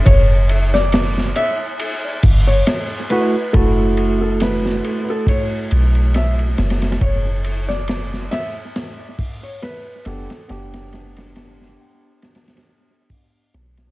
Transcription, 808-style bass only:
X:1
M:4/4
L:1/8
Q:"Swing 16ths" 1/4=69
K:F#phr
V:1 name="808-style bass" clef=bass
F,,,3 z2 G,,, z2 | F,,,3 z2 B,,,2 F,,, | F,,,3 z4 F,,, | F,,,3 z4 B,,, |]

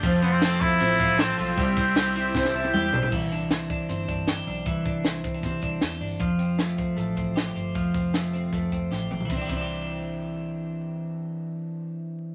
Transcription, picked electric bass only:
X:1
M:4/4
L:1/8
Q:1/4=155
K:C
V:1 name="Picked electric bass" clef=bass
F,,,4 A,,, A,,,2 B,,, | C,, C,,3 C, C,, E,, B,,, | C,,4 G,,, G,,,2 B,,, | C,, C,,3 C, C,, E,, G,,, |
F,,,4 A,,, A,,,2 G,,, | F,,, F,,,3 F,, F,,, A,,, B,,, | C,, C,,6- C,,- | C,,8 |]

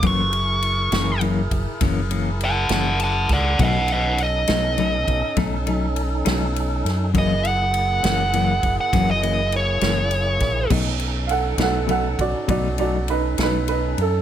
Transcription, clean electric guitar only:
X:1
M:12/8
L:1/8
Q:3/8=67
K:Bmix
V:1 name="Clean electric guitar"
[F,,E,^A,C] z2 [E,A,C] [F,,E,A,C] z [F,,E,A,C] [E,A,C] z [E,A,C] z2 | [B,,F,A,D] z2 [F,A,D] [B,,F,A,D] z [B,,F,A,D] [F,A,D] z [F,A,D] z2 | [F,,E,^A,C] z2 [E,A,C] [F,,E,A,C] z [F,,E,A,C] [E,A,C] z [E,A,C] z2 | [B,,F,A,D] z2 [F,A,D] [B,,F,A,D] z [B,,F,A,D] [F,A,D] z [F,A,D] z2 |]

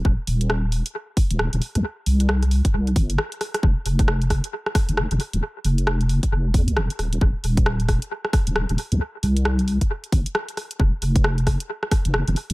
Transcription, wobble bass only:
X:1
M:4/4
L:1/16
Q:"Swing 16ths" 1/4=134
K:Cphr
V:1 name="Wobble bass" clef=bass
E,,, z E,,,4- E,,, z4 E,,,2 E,,, z D,, | z2 C,,4- C,, z C,,2 G,,,2 z4 | F,,, z F,,,4- F,,, z4 F,,,2 F,,, z E,,, | z2 F,,,4- F,,, z F,,,2 F,, C,, F,,, z E,,,2 |
E,,, z E,,,4- E,,, z4 E,,,2 E,,, z D,, | z2 C,,4- C,, z3 G,,, z4 z | F,,, z F,,,4- F,,, z4 F,,,2 F,,, z E,,, |]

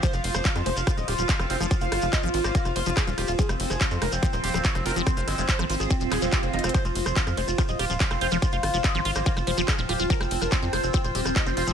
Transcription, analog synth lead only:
X:1
M:4/4
L:1/16
Q:1/4=143
K:Fm
V:1 name="Analog synth lead"
c F F c F F c F F e F F f F c F | F f F F e F F c F F c F A F G F | A C C A C C B C C c C C d C B C | C c C C c C C A C C A C G C E C |
c F F c F F c F F e F F f F c F | F f F F e F F c F F c F A F G F | B C C B C C c C C c C C e C c C |]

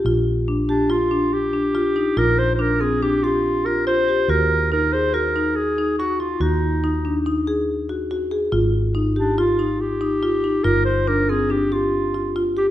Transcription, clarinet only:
X:1
M:5/4
L:1/16
Q:1/4=142
K:Eb
V:1 name="Clarinet"
z6 D2 F4 G8 | B2 c3/2 c/2 B2 A2 G2 F4 B2 c4 | B4 B2 c2 B4 A4 _G2 F2 | E8 z12 |
z6 D2 F4 G8 | B2 c2 B2 A2 G2 F6 z2 G2 |]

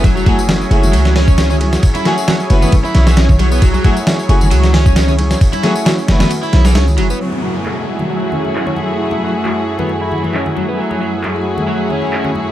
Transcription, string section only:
X:1
M:4/4
L:1/16
Q:"Swing 16ths" 1/4=134
K:F#m
V:1 name="String section"
z2 [A,EFG]2 z2 [A,EFG]2 z8 | z2 [A,EFG]2 z2 [A,EFB] z8 z | z2 [A,EFG]2 z2 [A,EFG]2 z8 | z2 [A,EFG]2 z2 [A,EFB] z8 z |
[A,EFG]16- | [A,EFG]16 | [A,EFG]16 |]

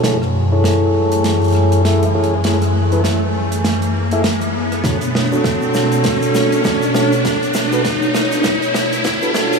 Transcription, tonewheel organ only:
X:1
M:4/4
L:1/16
Q:"Swing 16ths" 1/4=100
K:Bdor
V:1 name="Tonewheel organ"
[EGAc] z2 [EGAc]8- [EGAc] [EGAe] z [EGAc] z | [EGAc] z2 [EGAB] z6 z [EGAe] z4 | [DFAc] z2 [DFAc]8- [DFAc] [DFAd] z [DFAc] z | [DFAc] z2 [DFAB] z8 z [DFAB] [DFAc]2 |]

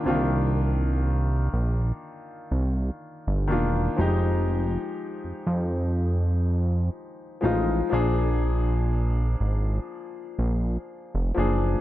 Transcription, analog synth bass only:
X:1
M:4/4
L:1/16
Q:"Swing 16ths" 1/4=61
K:Cm
V:1 name="Analog synth bass" clef=bass
C,,6 B,,,2 z2 C,,2 z G,,, =E,,,2 | F,,,4 z F,, F,,6 z2 =A,,,2 | B,,,6 A,,,2 z2 B,,,2 z F,,, ^F,,,2 |]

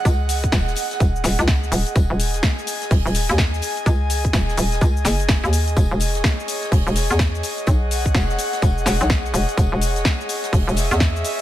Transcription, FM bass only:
X:1
M:4/4
L:1/16
Q:"Swing 16ths" 1/4=126
K:Ebphr
V:1 name="FM bass" clef=bass
D,,4 E,,,2 z2 E,,,2 E,,, D,,3 E,,, z | E,,, E,,,3 z4 E,,, E,,,2 E,,3 z2 | D,,4 E,,,2 E,,,2 D,,2 G,,,3 E,,3 | =E,,, E,,,3 z4 E,,, E,,,2 =E,,3 z2 |
=B,,,4 =E,,,2 z2 E,,,2 E,,, B,,,3 E,,, z | =E,,, E,,,3 z4 E,,, E,,,2 =E,,3 z2 |]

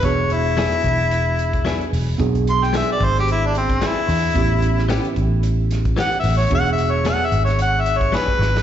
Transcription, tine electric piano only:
X:1
M:4/4
L:1/8
Q:"Swing 16ths" 1/4=111
K:Emix
V:1 name="Tine electric piano"
[B,DFG]8 | [B,DFG]8 | [B,CE=G]8 | [B,DFG]8 |]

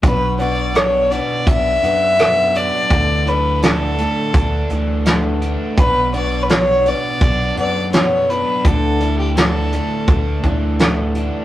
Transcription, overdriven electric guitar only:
X:1
M:4/4
L:1/8
Q:1/4=84
K:Bm
V:1 name="Overdriven electric guitar"
B,, F D B, D F, B, D | D, E D A, D E, A, D | B,, F D B, D F, B, D | D, E D A, D E, A, D |]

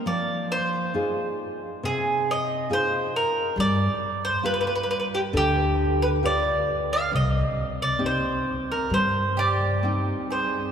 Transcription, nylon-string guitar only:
X:1
M:4/4
L:1/8
Q:1/4=68
K:Cm
V:1 name="Nylon-string guitar"
F,2 [EFA]2 C,2 [EFA]2 | G,2 [FG=B]2 D,2 [FGB]2 | C,2 [CEG]2 G,2 [CEg]2 |]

